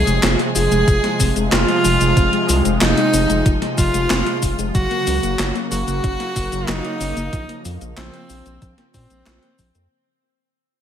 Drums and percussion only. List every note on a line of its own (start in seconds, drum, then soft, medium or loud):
0.07 closed hi-hat soft
0.07 cabasa soft
0.23 snare loud
0.23 clap medium
0.23 closed hi-hat medium
0.23 cabasa soft
0.39 closed hi-hat soft
0.56 open hi-hat medium
0.56 cabasa medium
0.72 closed hi-hat soft
0.72 cabasa soft
0.88 kick loud
0.88 closed hi-hat medium
0.88 cabasa soft
1.04 snare soft
1.04 closed hi-hat soft
1.20 kick medium
1.20 open hi-hat medium
1.20 cabasa medium
1.36 closed hi-hat soft
1.36 cabasa soft
1.52 snare loud
1.52 clap medium
1.52 closed hi-hat medium
1.52 cabasa soft
1.68 closed hi-hat soft
1.85 open hi-hat medium
1.85 cabasa medium
2.01 closed hi-hat soft
2.01 cabasa soft
2.17 kick loud
2.17 closed hi-hat medium
2.17 cabasa soft
2.33 closed hi-hat soft
2.49 open hi-hat medium
2.49 cabasa medium
2.65 closed hi-hat soft
2.65 cabasa soft
2.81 snare loud
2.81 clap loud
2.81 closed hi-hat medium
2.81 cabasa soft
2.97 closed hi-hat soft
3.14 open hi-hat medium
3.14 cabasa medium
3.30 closed hi-hat soft
3.30 cabasa soft
3.46 kick loud
3.46 closed hi-hat medium
3.46 cabasa soft
3.62 snare soft
3.62 closed hi-hat soft
3.78 kick loud
3.78 open hi-hat medium
3.78 cabasa medium
3.94 closed hi-hat soft
3.94 cabasa soft
4.10 snare loud
4.10 clap medium
4.10 closed hi-hat medium
4.10 cabasa soft
4.26 closed hi-hat soft
4.43 kick medium
4.43 open hi-hat medium
4.43 cabasa medium
4.59 closed hi-hat soft
4.59 cabasa soft
4.75 kick loud
4.75 closed hi-hat medium
4.75 cabasa soft
4.91 closed hi-hat soft
5.07 open hi-hat medium
5.07 cabasa medium
5.23 closed hi-hat soft
5.23 cabasa soft
5.39 snare loud
5.39 clap loud
5.39 closed hi-hat medium
5.39 cabasa soft
5.55 closed hi-hat soft
5.72 open hi-hat medium
5.72 cabasa medium
5.88 closed hi-hat soft
5.88 cabasa soft
6.04 kick loud
6.04 closed hi-hat medium
6.04 cabasa soft
6.20 snare soft
6.20 closed hi-hat soft
6.36 kick medium
6.36 open hi-hat medium
6.36 cabasa medium
6.52 closed hi-hat soft
6.52 cabasa soft
6.68 snare loud
6.68 clap loud
6.68 closed hi-hat medium
6.68 cabasa soft
6.85 closed hi-hat soft
7.01 open hi-hat medium
7.01 cabasa medium
7.17 closed hi-hat soft
7.17 cabasa soft
7.33 kick loud
7.33 closed hi-hat medium
7.33 cabasa soft
7.49 closed hi-hat soft
7.65 open hi-hat medium
7.65 cabasa medium
7.81 closed hi-hat soft
7.81 cabasa soft
7.97 snare loud
7.97 clap loud
7.97 closed hi-hat medium
7.97 cabasa soft
8.14 closed hi-hat soft
8.30 open hi-hat medium
8.30 cabasa medium
8.46 closed hi-hat soft
8.46 cabasa soft
8.62 kick loud
8.62 closed hi-hat medium
8.62 cabasa soft
8.78 snare soft
8.78 closed hi-hat soft
8.94 kick loud
8.94 open hi-hat medium
8.94 cabasa medium
9.10 closed hi-hat soft
9.10 cabasa soft
9.27 snare loud
9.27 clap loud
9.27 closed hi-hat medium
9.27 cabasa soft
9.43 closed hi-hat soft
9.59 kick medium
9.59 open hi-hat medium
9.59 cabasa medium
9.75 closed hi-hat soft
9.75 cabasa soft